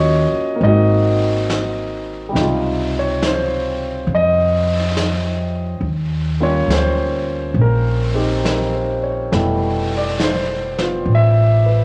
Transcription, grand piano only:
Already playing: A#3 C#4 F4 F#4 C#5 D#5
0.56 A#3 C4
0.63 D#4 F#4 D#5
2.29 C3 G3
2.36 D#4
2.40 F4
2.99 C#5
3.26 C5
4.15 D#5
6.40 G3 A#3 C#4 F4 C#5
6.72 C5
7.61 A#4
8.14 C4 D#4 G4
8.45 A#4
8.74 C5
9.03 C#5
9.32 B2 G3 A3 E4
9.97 D5
10.23 C5
10.78 B3 F4
11.15 E5
11.66 B4

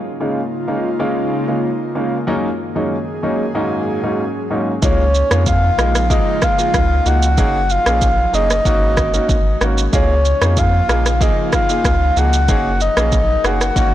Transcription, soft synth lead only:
4.84 C#5
5.48 F5
6.11 D#5
6.43 F5
7.07 F#5
7.39 F#5
7.71 F5
8.35 D#5
9.94 C#5
10.58 F5
11.22 D#5
11.54 F5
12.18 F#5
12.82 D#5
13.45 F#5

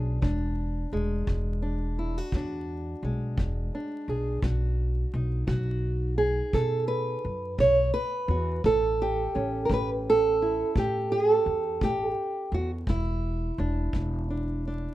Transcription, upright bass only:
Already playing: B1
0.22 E1
0.92 E1
1.27 E1
2.33 E2
3.03 B1
3.37 E1
4.08 B1
4.43 B1
5.14 B1
5.48 B1
6.53 B2
7.25 F#2
7.59 B1
8.28 E2
8.65 A1
9.36 A1
9.70 A1
10.75 A2
11.46 E2
11.81 A1
12.52 E2
12.87 E1
13.58 E1
13.93 E1

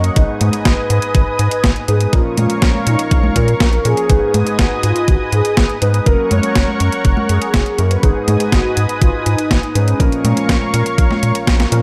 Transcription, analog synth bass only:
Already playing: F#2
0.16 G#1
0.41 G#2
0.66 G#1
0.90 G#2
1.15 G#1
1.39 G#2
1.64 G#1
1.88 G#2
2.13 A#1
2.38 A#2
2.62 A#1
2.87 A#2
3.11 A#1
3.36 A#2
3.61 A#1
3.85 A#2
4.10 G#1
4.34 G#2
4.59 G#1
4.83 G#2
5.08 G#1
5.33 G#2
5.57 G#1
5.82 G#2
6.06 F#1
6.31 F#2
6.56 F#1
6.80 F#2
7.05 F#1
7.30 F#2
7.54 F#1
7.79 F#2
8.03 G#1
8.28 G#2
8.52 G#1
8.77 G#2
9.02 G#1
9.26 G#2
9.51 G#1
9.75 G#2
10.00 A#1
10.25 A#2
10.49 A#1
10.74 A#2
10.98 A#1
11.23 A#2
11.47 A#1
11.72 A#2

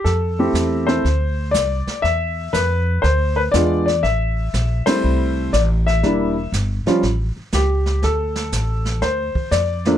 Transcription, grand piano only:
0.04 A4
0.39 A3 C4 E4 G4
0.87 A3 C4 E4 A4 C5
1.51 D5
2.02 E5
2.53 B4
3.02 C5
3.36 B4
3.52 G#3 B3 D4 F4 D5
3.86 D5
4.03 E5
4.86 G3 A3 C4 E4 C5
5.53 D5
5.87 E5
6.03 G3 A#3 D4 E4
6.87 F3 G3 C#4 F4
7.54 G4
8.04 A4
9.02 C5
9.51 D5
9.86 F3 A3 A#3 D4

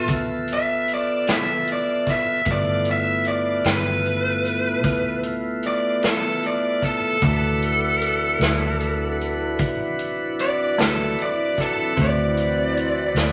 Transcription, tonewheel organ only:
Already playing: B3 F4 A4 E5
2.46 A3 B3 E4 F4
7.23 D4 E4 F#4 B4
11.96 C4 E4 F#4 B4

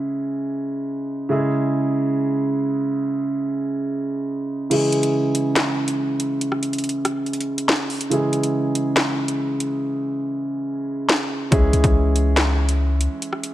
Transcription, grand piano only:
Already playing: C#3 G#3 E4 G#4
1.29 C#3 G#3 E4 G#4
4.70 C#3 E3 G#3 E4 G#4
8.10 C#3 E3 G#3 E4 G#4
11.51 E3 G#3 C#4 E4 G#4

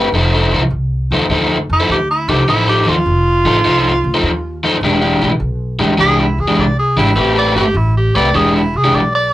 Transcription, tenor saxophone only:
1.73 E4
1.92 G4
2.11 E4
2.29 G4
2.49 E4
2.69 G4
2.89 F4
6.00 G#4
6.20 E4
6.40 G#4
6.61 D5
6.79 G#4
6.99 E4
7.19 G4
7.39 D5
7.57 G4
7.77 E4
7.97 G4
8.16 D5
8.36 G#4
8.56 E4
8.77 G#4
8.95 D5
9.15 D5

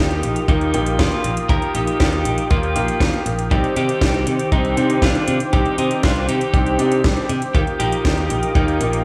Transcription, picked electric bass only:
0.00 D#2
0.24 A#1
0.48 D#2
0.74 A#1
0.99 D#2
1.24 A#1
1.49 D#2
1.75 A#1
2.00 D#2
2.25 A#1
2.51 D#2
2.75 A#1
3.00 D#2
3.26 A#1
3.51 C2
3.76 C3
4.01 C2
4.27 C3
4.52 C2
4.77 C3
5.02 C2
5.28 C3
5.53 C2
5.78 C3
6.04 C2
6.28 C3
6.54 C2
6.79 C3
7.04 C2
7.29 C3
7.55 D#2
7.80 A#1
8.05 D#2
8.30 A#1
8.55 D#2
8.81 A#1

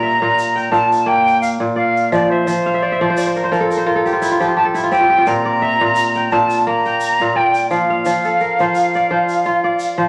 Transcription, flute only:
Already playing: A#5
0.71 A5
1.07 G5
1.41 F5
1.76 F5
2.12 D5
2.29 C5
4.56 A5
4.90 G5
5.27 A#5
6.32 A5
6.66 A#5
7.36 G5
7.69 F5

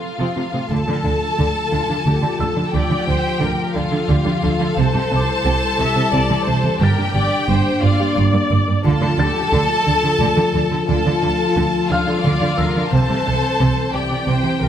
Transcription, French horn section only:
0.69 F3 F4
4.78 G3 E4
6.82 A#3 D4
8.83 F3 F4
12.90 E3 C4

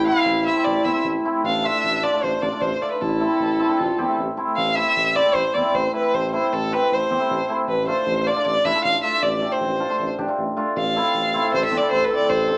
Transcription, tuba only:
0.26 A1
0.66 A1
0.84 E2
1.04 A1
1.44 A1
1.84 A1
2.23 A1
2.42 A1
2.61 A1
3.01 A1
3.39 A1
3.79 A1
3.99 E2
4.18 A1
4.57 A1
4.96 A1
5.34 A1
5.55 E2
5.74 A1
6.13 A1
6.52 A1
6.91 A1
7.10 E2
7.30 A1
7.67 A1
8.06 A1
8.45 A1
8.64 A1
8.84 A1
9.22 A1
9.60 A1
9.99 A1
10.18 A1
10.38 A1
10.76 A1
11.14 A1
11.53 A1
11.71 E2
11.91 A1
12.29 A1

